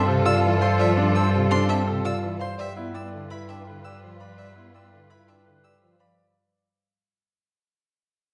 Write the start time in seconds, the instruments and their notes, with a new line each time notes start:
Already playing: cello G2, string section F4 A4, clarinet A4, marimba A5
0.08 pipe organ C3, grand piano A4
0.26 grand piano F4, marimba D5, violin E6
0.43 pipe organ E3
0.61 grand piano C5, marimba F5, violin C6
0.79 pipe organ F3, marimba D5, violin E5
0.97 grand piano D4
1.15 grand piano C5, marimba A5, violin E6
1.34 pipe organ C3
1.51 grand piano D4, marimba C5, violin C6
1.69 pipe organ C4, violin E5, marimba A5
1.87 pipe organ C3, grand piano A4
2.05 grand piano F4, marimba D5, violin E6
2.23 pipe organ E3
2.40 grand piano C5, marimba F5, violin C6
2.58 cello G2, pipe organ G3, string section F4 B4, clarinet B4, marimba D5, violin E5
2.77 pipe organ B3, grand piano E4
2.94 grand piano D5, marimba G5, violin E6
3.13 pipe organ D3
3.30 grand piano E4, marimba B4, violin B5
3.48 pipe organ D4, violin E5, marimba G5
3.67 pipe organ D3, grand piano B4
3.84 grand piano G4, marimba D5, violin E6
4.03 pipe organ F3
4.20 grand piano D5, marimba F5, violin B5
4.38 pipe organ G3, marimba D5, violin E5
4.56 pipe organ B3, grand piano E4
4.74 grand piano D5, marimba G5, violin E6
4.92 pipe organ D3
5.10 grand piano E4, marimba B4, violin B5
5.28 pipe organ D4, violin E5, marimba G5
5.46 pipe organ D3, grand piano B4
5.63 grand piano G4, marimba D5, violin E6
5.82 pipe organ F3
5.99 grand piano D5, marimba F5, violin B5